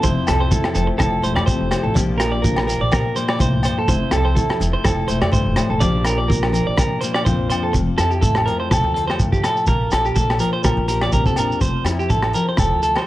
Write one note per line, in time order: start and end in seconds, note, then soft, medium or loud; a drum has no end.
0.00 0.16 F1 medium
0.00 1.96 F2 medium
0.00 0.28 F4 medium
0.00 0.26 C5 medium
0.00 kick medium
0.00 shekere medium
0.04 0.50 E4 medium
0.27 0.50 C2 medium
0.27 0.40 A4 medium
0.27 1.47 A4 soft
0.27 cross-stick medium
0.27 closed hi-hat soft
0.27 low agogo medium
0.27 shekere medium
0.40 0.51 C5 medium
0.51 0.99 E4 medium
0.51 0.73 A4 medium
0.51 kick medium
0.51 shekere medium
0.64 cross-stick medium
0.64 low agogo medium
0.75 0.88 F1 medium
0.75 1.95 F3 medium
0.75 1.21 A3 soft
0.75 0.87 A4 medium
0.75 closed hi-hat soft
0.75 shekere medium
0.87 muted clean electric guitar stroke medium
0.98 1.22 F1 medium
0.98 1.71 E4 medium
0.98 1.22 A4 medium
0.98 kick medium
0.98 cross-stick medium
0.98 low agogo medium
0.98 shekere medium
1.22 1.36 E1 medium
1.22 1.93 A3 medium
1.22 1.35 C5 medium
1.22 closed hi-hat soft
1.22 shekere medium
1.35 1.47 F2 medium
1.35 1.46 D5 medium
1.35 cross-stick medium
1.35 low agogo medium
1.46 1.93 C3 medium
1.46 1.93 A4 medium
1.46 1.70 C5 medium
1.46 kick medium
1.46 shekere medium
1.60 1.71 F1 medium
1.71 1.93 E4 medium
1.71 1.84 C5 medium
1.71 cross-stick medium
1.71 closed hi-hat soft
1.71 low agogo medium
1.71 shekere medium
1.83 1.95 A1 medium
1.83 1.94 A4 medium
1.94 2.77 A#1 medium
1.94 3.88 A#2 medium
1.94 2.67 F3 medium
1.94 2.67 A#3 soft
1.94 2.42 D4 medium
1.94 2.20 G4 medium
1.94 muted clean electric guitar stroke medium
1.94 kick medium
1.94 shekere loud
2.18 3.86 G4 soft
2.18 2.31 A#4 medium
2.18 cross-stick medium
2.18 closed hi-hat medium
2.18 low agogo medium
2.18 shekere medium
2.32 2.43 D5 medium
2.42 2.92 D4 medium
2.42 2.66 A#4 medium
2.42 kick medium
2.42 shekere medium
2.56 cross-stick medium
2.56 low agogo medium
2.67 3.93 F3 medium
2.67 3.15 A#3 medium
2.67 2.80 A#4 medium
2.67 closed hi-hat soft
2.67 shekere medium
2.80 3.03 A#1 medium
2.80 2.92 D5 medium
2.92 3.86 D4 medium
2.92 3.15 A#4 medium
2.92 kick medium
2.92 cross-stick medium
2.92 low agogo medium
2.92 shekere medium
3.16 3.86 A#3 medium
3.16 3.28 C5 medium
3.16 closed hi-hat soft
3.16 shekere medium
3.28 3.40 D5 medium
3.28 cross-stick medium
3.28 low agogo medium
3.39 3.63 C2 medium
3.39 3.64 A2 medium
3.39 3.63 C5 medium
3.39 kick medium
3.39 shekere medium
3.63 3.89 G2 medium
3.63 3.77 C5 medium
3.63 closed hi-hat medium
3.63 low agogo medium
3.63 shekere medium
3.79 3.89 A4 medium
3.88 4.01 F1 medium
3.88 5.31 F2 medium
3.88 4.35 E4 medium
3.88 4.11 C5 medium
3.88 kick medium
3.88 shekere medium
4.11 4.35 C2 medium
4.11 4.25 A4 medium
4.11 5.79 A4 medium
4.11 cross-stick medium
4.11 closed hi-hat medium
4.11 low agogo medium
4.11 shekere medium
4.25 4.36 C5 medium
4.35 4.84 E4 medium
4.35 4.59 A4 medium
4.35 kick medium
4.35 shekere medium
4.50 cross-stick medium
4.50 low agogo medium
4.60 4.73 F1 medium
4.60 5.81 F3 medium
4.60 5.08 A3 soft
4.60 closed hi-hat soft
4.60 shekere medium
4.73 4.84 C5 medium
4.84 5.08 F1 loud
4.84 5.79 E4 medium
4.84 5.07 A4 medium
4.84 kick medium
4.84 cross-stick medium
4.84 low agogo medium
4.84 shekere medium
5.08 5.21 E1 medium
5.08 5.79 A3 medium
5.08 5.21 C5 medium
5.08 closed hi-hat soft
5.08 shekere medium
5.22 5.33 F2 medium
5.22 5.32 D5 medium
5.22 cross-stick medium
5.22 low agogo medium
5.32 5.56 G2 medium
5.32 5.56 C5 medium
5.32 kick medium
5.32 shekere medium
5.46 5.56 F1 medium
5.56 5.81 A2 medium
5.56 5.69 C5 medium
5.56 cross-stick medium
5.56 closed hi-hat soft
5.56 low agogo medium
5.56 shekere medium
5.70 5.80 E1 medium
5.70 5.81 A4 medium
5.80 6.63 A#1 loud
5.80 7.74 A#2 medium
5.80 6.51 F3 medium
5.80 6.54 A#3 medium
5.80 6.29 D4 medium
5.80 6.06 G4 medium
5.80 6.04 D5 medium
5.80 kick medium
5.80 shekere medium
6.05 7.26 G4 medium
6.05 6.18 A#4 medium
6.05 cross-stick medium
6.05 closed hi-hat soft
6.05 low agogo medium
6.05 shekere medium
6.18 6.29 D5 medium
6.28 6.75 D4 medium
6.28 6.52 A#4 medium
6.28 kick medium
6.28 shekere medium
6.43 cross-stick medium
6.43 low agogo medium
6.52 7.71 F3 medium
6.52 6.66 A#4 medium
6.52 closed hi-hat soft
6.52 shekere medium
6.66 6.89 A#1 medium
6.66 6.77 D5 medium
6.77 7.50 D4 medium
6.77 7.01 A#4 medium
6.77 kick medium
6.77 cross-stick medium
6.77 low agogo medium
6.77 shekere loud
7.01 7.72 A#3 medium
7.01 7.14 C5 medium
7.01 closed hi-hat soft
7.01 shekere medium
7.14 7.25 D5 medium
7.14 cross-stick medium
7.14 low agogo medium
7.25 7.49 A#1 medium
7.25 7.73 F2 medium
7.25 8.97 F4 medium
7.25 7.48 C5 medium
7.25 kick medium
7.25 shekere medium
7.50 7.73 D4 medium
7.50 7.62 C5 medium
7.50 closed hi-hat medium
7.50 low agogo medium
7.50 shekere medium
7.63 7.74 A4 medium
7.73 7.87 F1 medium
7.73 9.20 F2 medium
7.73 muted clean electric guitar stroke medium
7.73 kick medium
7.73 shekere loud
7.98 8.21 F2 medium
7.98 9.65 E4 medium
7.98 8.11 A4 medium
7.98 cross-stick medium
7.98 closed hi-hat soft
7.98 low agogo medium
7.98 shekere medium
8.10 8.22 G4 medium
8.10 shekere soft
8.21 8.45 A1 loud
8.21 9.66 A3 medium
8.21 8.45 A4 medium
8.21 kick medium
8.21 shekere medium
8.35 cross-stick medium
8.35 low agogo medium
8.46 10.39 F3 medium
8.46 8.59 A#4 medium
8.46 closed hi-hat soft
8.60 8.71 C5 medium
8.71 8.83 E1 medium
8.71 8.93 A4 medium
8.71 kick medium
8.71 cross-stick medium
8.71 low agogo medium
8.71 shekere medium
8.84 9.07 D2 medium
8.94 9.07 A4 medium
8.94 9.66 A4 medium
8.94 closed hi-hat soft
9.07 9.19 C5 medium
9.07 cross-stick medium
9.07 low agogo medium
9.20 9.43 G2 medium
9.20 kick medium
9.20 shekere medium
9.32 9.43 G4 medium
9.32 kick medium
9.32 shekere soft
9.43 9.68 A2 medium
9.43 9.67 A4 medium
9.43 cross-stick medium
9.43 closed hi-hat soft
9.43 low agogo medium
9.43 shekere medium
9.57 shekere soft
9.67 9.91 A#1 medium
9.67 11.13 A#2 medium
9.67 9.91 A#4 medium
9.67 kick medium
9.67 shekere medium
9.91 10.15 A#1 medium
9.91 11.38 D4 medium
9.91 10.05 A4 medium
9.91 cross-stick medium
9.91 closed hi-hat soft
9.91 low agogo medium
9.91 shekere medium
10.05 10.16 G4 medium
10.05 shekere soft
10.16 10.39 A#1 loud
10.16 11.60 A#3 medium
10.16 10.39 A4 medium
10.16 kick medium
10.16 shekere medium
10.30 cross-stick medium
10.30 low agogo medium
10.39 11.91 F3 medium
10.39 10.52 A#4 medium
10.39 closed hi-hat soft
10.39 shekere medium
10.53 10.64 C5 medium
10.64 10.79 A#2 medium
10.64 10.87 A#4 medium
10.64 kick medium
10.64 cross-stick medium
10.64 low agogo medium
10.64 shekere medium
10.77 11.11 A#1 medium
10.88 11.60 G4 medium
10.88 11.01 A#4 medium
10.88 closed hi-hat soft
10.88 shekere medium
11.01 11.13 D5 medium
11.01 cross-stick medium
11.01 low agogo medium
11.12 11.36 A#1 medium
11.12 11.61 F2 medium
11.12 11.26 A#4 medium
11.12 kick medium
11.12 shekere medium
11.26 11.37 A4 medium
11.26 kick medium
11.26 shekere soft
11.36 11.49 A#1 medium
11.36 11.60 D4 medium
11.36 11.61 A#4 medium
11.36 closed hi-hat medium
11.36 low agogo medium
11.36 shekere medium
11.52 shekere soft
11.61 11.74 F1 medium
11.61 13.07 F2 medium
11.61 11.85 C5 medium
11.61 kick medium
11.61 shekere loud
11.84 12.08 F2 medium
11.84 13.07 E4 medium
11.84 muted clean electric guitar stroke medium
11.84 cross-stick medium
11.84 closed hi-hat medium
11.84 low agogo medium
11.84 shekere medium
11.99 12.10 G4 medium
11.99 shekere soft
12.10 12.33 A1 medium
12.10 12.33 A4 medium
12.10 muted steel-string acoustic guitar stroke medium
12.10 kick medium
12.10 shekere medium
12.22 cross-stick medium
12.22 low agogo medium
12.33 13.07 F3 medium
12.33 12.47 A#4 medium
12.33 closed hi-hat soft
12.33 shekere medium
12.49 12.59 C5 medium
12.57 12.71 E1 medium
12.57 12.82 A4 medium
12.57 kick medium
12.57 cross-stick medium
12.57 low agogo medium
12.57 shekere loud
12.72 12.95 D2 medium
12.83 12.96 A4 medium
12.83 13.07 A4 medium
12.83 closed hi-hat soft
12.83 shekere medium
12.96 13.07 C5 medium
12.96 cross-stick medium
12.96 low agogo medium